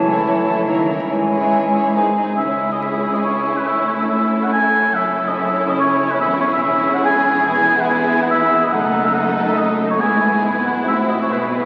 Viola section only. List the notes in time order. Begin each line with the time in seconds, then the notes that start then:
0.04 E4
0.45 E4
0.66 E4
0.88 E4
1.32 E4
1.74 E4
1.95 D#4
2.16 D#4
2.37 C#4
4.95 C#4
7.48 B3
8.73 A3
10.01 B3
10.87 C4
11.32 B3